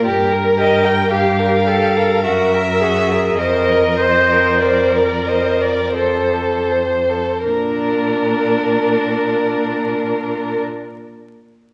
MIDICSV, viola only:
0, 0, Header, 1, 2, 480
1, 0, Start_track
1, 0, Key_signature, -2, "major"
1, 0, Tempo, 1058201
1, 26, Time_signature, 3, 2, 24, 8
1, 506, Tempo, 1119403
1, 986, Tempo, 1153846
1, 1466, Tempo, 1219512
1, 1946, Tempo, 1342282
1, 2426, Tempo, 1500000
1, 2906, Tempo, 1449275
1, 4325, End_track
2, 0, Start_track
2, 0, Title_t, "Viola"
2, 0, Program_c, 0, 41
2, 25, Note_on_c, 0, 70, 69
2, 503, Note_on_c, 0, 67, 52
2, 509, Note_off_c, 0, 70, 0
2, 744, Note_on_c, 0, 69, 43
2, 750, Note_off_c, 0, 67, 0
2, 983, Note_off_c, 0, 69, 0
2, 986, Note_on_c, 0, 70, 51
2, 1220, Note_on_c, 0, 68, 47
2, 1226, Note_off_c, 0, 70, 0
2, 1463, Note_on_c, 0, 70, 56
2, 1469, Note_off_c, 0, 68, 0
2, 1697, Note_off_c, 0, 70, 0
2, 1699, Note_on_c, 0, 72, 56
2, 1948, Note_on_c, 0, 70, 45
2, 1953, Note_off_c, 0, 72, 0
2, 2423, Note_off_c, 0, 70, 0
2, 2425, Note_on_c, 0, 69, 36
2, 2661, Note_off_c, 0, 69, 0
2, 2909, Note_on_c, 0, 62, 49
2, 3948, Note_off_c, 0, 62, 0
2, 4325, End_track
0, 0, End_of_file